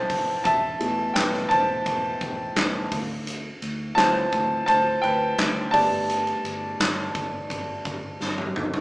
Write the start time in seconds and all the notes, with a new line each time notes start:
Already playing: E3 A3 C4 A4 B4 C5 E5 G5 A5
0.10 F1, kick, open hi-hat, ride
0.44 E1 E5 A5, kick, hi-hat pedal, ride
0.79 E1 B2 E3 A3, ride
1.14 E1 B4 G5, snare, clap, ride
1.33 snare
1.49 E1 C5 A5, kick, ride
1.86 E1, kick, ride
2.21 E1, kick, ride
2.55 E1 E3 A3 B3, snare, clap, ride
2.92 D2, kick, open hi-hat, ride
3.27 hi-hat pedal, ride
3.62 D2, ride
3.95 D2 E3 F3 C4 C5 A5, snare, clap, ride
4.32 D2, kick, ride
4.66 D2 C5 A5, kick, ride
5.02 D2 B4 G5, ride
5.38 D2, snare, clap, ride
5.71 G1 G3 A3 B3 D5 A5, kick, open hi-hat, ride
6.09 hi-hat pedal, ride
6.27 ride
6.44 G1, ride
6.80 G1, snare, clap, ride
7.15 G1, kick, ride
7.50 G1, kick, ride
7.85 G1, kick, ride
8.21 G1, snare
8.38 high tom
8.56 G1, mid tom
8.74 floor tom